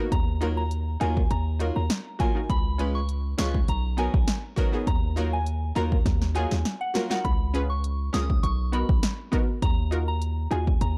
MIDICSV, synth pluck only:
0, 0, Header, 1, 2, 480
1, 0, Start_track
1, 0, Key_signature, -6, "minor"
1, 0, Tempo, 594059
1, 96, Time_signature, 4, 2, 24, 8
1, 8871, End_track
2, 0, Start_track
2, 0, Title_t, "Synth pluck"
2, 0, Program_c, 0, 84
2, 328, Note_on_c, 0, 63, 79
2, 334, Note_on_c, 0, 65, 70
2, 339, Note_on_c, 0, 66, 71
2, 345, Note_on_c, 0, 70, 88
2, 434, Note_off_c, 0, 63, 0
2, 437, Note_off_c, 0, 65, 0
2, 439, Note_off_c, 0, 66, 0
2, 443, Note_off_c, 0, 70, 0
2, 808, Note_on_c, 0, 63, 79
2, 814, Note_on_c, 0, 65, 71
2, 819, Note_on_c, 0, 66, 68
2, 825, Note_on_c, 0, 70, 84
2, 914, Note_off_c, 0, 63, 0
2, 917, Note_off_c, 0, 65, 0
2, 920, Note_off_c, 0, 66, 0
2, 922, Note_off_c, 0, 70, 0
2, 1289, Note_on_c, 0, 63, 77
2, 1295, Note_on_c, 0, 65, 66
2, 1299, Note_on_c, 0, 66, 70
2, 1304, Note_on_c, 0, 70, 84
2, 1394, Note_off_c, 0, 63, 0
2, 1397, Note_off_c, 0, 65, 0
2, 1399, Note_off_c, 0, 66, 0
2, 1402, Note_off_c, 0, 70, 0
2, 1769, Note_on_c, 0, 66, 75
2, 1784, Note_on_c, 0, 70, 85
2, 1824, Note_off_c, 0, 66, 0
2, 1831, Note_off_c, 0, 70, 0
2, 1897, Note_on_c, 0, 63, 68
2, 1902, Note_on_c, 0, 65, 63
2, 1906, Note_on_c, 0, 66, 61
2, 1913, Note_on_c, 0, 70, 72
2, 1990, Note_off_c, 0, 63, 0
2, 1993, Note_off_c, 0, 65, 0
2, 1995, Note_off_c, 0, 66, 0
2, 1999, Note_off_c, 0, 70, 0
2, 2249, Note_on_c, 0, 61, 77
2, 2255, Note_on_c, 0, 65, 72
2, 2260, Note_on_c, 0, 68, 71
2, 2265, Note_on_c, 0, 71, 87
2, 2354, Note_off_c, 0, 61, 0
2, 2357, Note_off_c, 0, 65, 0
2, 2360, Note_off_c, 0, 68, 0
2, 2362, Note_off_c, 0, 71, 0
2, 2729, Note_on_c, 0, 61, 78
2, 2734, Note_on_c, 0, 65, 72
2, 2739, Note_on_c, 0, 68, 71
2, 2744, Note_on_c, 0, 71, 83
2, 2834, Note_off_c, 0, 61, 0
2, 2837, Note_off_c, 0, 65, 0
2, 2839, Note_off_c, 0, 68, 0
2, 2842, Note_off_c, 0, 71, 0
2, 3207, Note_on_c, 0, 59, 78
2, 3213, Note_on_c, 0, 63, 74
2, 3218, Note_on_c, 0, 66, 71
2, 3224, Note_on_c, 0, 70, 85
2, 3314, Note_off_c, 0, 59, 0
2, 3316, Note_off_c, 0, 63, 0
2, 3319, Note_off_c, 0, 66, 0
2, 3322, Note_off_c, 0, 70, 0
2, 3687, Note_on_c, 0, 66, 89
2, 3703, Note_on_c, 0, 70, 99
2, 3743, Note_off_c, 0, 66, 0
2, 3750, Note_off_c, 0, 70, 0
2, 3814, Note_on_c, 0, 59, 70
2, 3820, Note_on_c, 0, 63, 63
2, 3825, Note_on_c, 0, 66, 61
2, 3829, Note_on_c, 0, 68, 78
2, 3909, Note_off_c, 0, 59, 0
2, 3912, Note_off_c, 0, 63, 0
2, 3915, Note_off_c, 0, 66, 0
2, 3917, Note_off_c, 0, 68, 0
2, 4169, Note_on_c, 0, 63, 80
2, 4175, Note_on_c, 0, 65, 73
2, 4180, Note_on_c, 0, 66, 75
2, 4185, Note_on_c, 0, 70, 89
2, 4275, Note_off_c, 0, 63, 0
2, 4277, Note_off_c, 0, 65, 0
2, 4280, Note_off_c, 0, 66, 0
2, 4282, Note_off_c, 0, 70, 0
2, 4648, Note_on_c, 0, 63, 79
2, 4654, Note_on_c, 0, 65, 69
2, 4659, Note_on_c, 0, 66, 73
2, 4664, Note_on_c, 0, 70, 89
2, 4754, Note_off_c, 0, 63, 0
2, 4757, Note_off_c, 0, 65, 0
2, 4759, Note_off_c, 0, 66, 0
2, 4762, Note_off_c, 0, 70, 0
2, 5128, Note_on_c, 0, 63, 76
2, 5133, Note_on_c, 0, 65, 73
2, 5138, Note_on_c, 0, 66, 68
2, 5144, Note_on_c, 0, 68, 86
2, 5234, Note_off_c, 0, 63, 0
2, 5236, Note_off_c, 0, 65, 0
2, 5239, Note_off_c, 0, 66, 0
2, 5242, Note_off_c, 0, 68, 0
2, 5607, Note_on_c, 0, 66, 77
2, 5622, Note_on_c, 0, 70, 86
2, 5662, Note_off_c, 0, 66, 0
2, 5670, Note_off_c, 0, 70, 0
2, 5736, Note_on_c, 0, 63, 70
2, 5741, Note_on_c, 0, 65, 65
2, 5746, Note_on_c, 0, 66, 60
2, 5751, Note_on_c, 0, 70, 75
2, 5830, Note_off_c, 0, 63, 0
2, 5833, Note_off_c, 0, 65, 0
2, 5835, Note_off_c, 0, 66, 0
2, 5838, Note_off_c, 0, 70, 0
2, 6089, Note_on_c, 0, 61, 79
2, 6093, Note_on_c, 0, 65, 74
2, 6099, Note_on_c, 0, 68, 74
2, 6104, Note_on_c, 0, 71, 88
2, 6194, Note_off_c, 0, 61, 0
2, 6196, Note_off_c, 0, 65, 0
2, 6199, Note_off_c, 0, 68, 0
2, 6202, Note_off_c, 0, 71, 0
2, 6567, Note_on_c, 0, 61, 81
2, 6573, Note_on_c, 0, 65, 72
2, 6578, Note_on_c, 0, 68, 72
2, 6583, Note_on_c, 0, 70, 85
2, 6674, Note_off_c, 0, 61, 0
2, 6676, Note_off_c, 0, 65, 0
2, 6679, Note_off_c, 0, 68, 0
2, 6682, Note_off_c, 0, 70, 0
2, 7048, Note_on_c, 0, 59, 75
2, 7052, Note_on_c, 0, 63, 71
2, 7058, Note_on_c, 0, 66, 72
2, 7063, Note_on_c, 0, 70, 81
2, 7154, Note_off_c, 0, 59, 0
2, 7156, Note_off_c, 0, 63, 0
2, 7159, Note_off_c, 0, 66, 0
2, 7161, Note_off_c, 0, 70, 0
2, 7527, Note_on_c, 0, 59, 96
2, 7532, Note_on_c, 0, 63, 87
2, 7537, Note_on_c, 0, 66, 84
2, 7543, Note_on_c, 0, 70, 100
2, 7634, Note_off_c, 0, 59, 0
2, 7636, Note_off_c, 0, 63, 0
2, 7638, Note_off_c, 0, 66, 0
2, 7641, Note_off_c, 0, 70, 0
2, 8007, Note_on_c, 0, 63, 79
2, 8013, Note_on_c, 0, 65, 71
2, 8017, Note_on_c, 0, 66, 72
2, 8023, Note_on_c, 0, 70, 90
2, 8113, Note_off_c, 0, 63, 0
2, 8117, Note_off_c, 0, 65, 0
2, 8118, Note_off_c, 0, 66, 0
2, 8121, Note_off_c, 0, 70, 0
2, 8489, Note_on_c, 0, 63, 78
2, 8494, Note_on_c, 0, 65, 73
2, 8499, Note_on_c, 0, 66, 72
2, 8504, Note_on_c, 0, 68, 89
2, 8594, Note_off_c, 0, 63, 0
2, 8597, Note_off_c, 0, 65, 0
2, 8600, Note_off_c, 0, 66, 0
2, 8602, Note_off_c, 0, 68, 0
2, 8871, End_track
0, 0, End_of_file